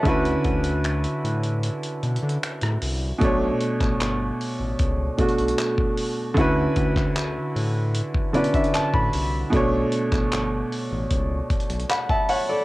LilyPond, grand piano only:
\new Staff \with { instrumentName = "Grand piano" } { \time 4/4 \key b \minor \tempo 4 = 76 << { <e'' a''>16 r2. r8. | r1 | r2 r8 d''16 e''16 a''16 b''8. | r2. <fis'' b''>16 <e'' a''>16 <cis'' fis''>16 <a' d''>16 | } \\ { <d cis' e' fis' b'>1 | <b, a d' cis''>2~ <b, a d' cis''>8 <b, a d' fis'>4. | <d cis' e' fis' b'>2~ <d cis' e' fis' b'>8 <d cis' e' fis' b'>4. | <b, a d' cis''>1 | } >> }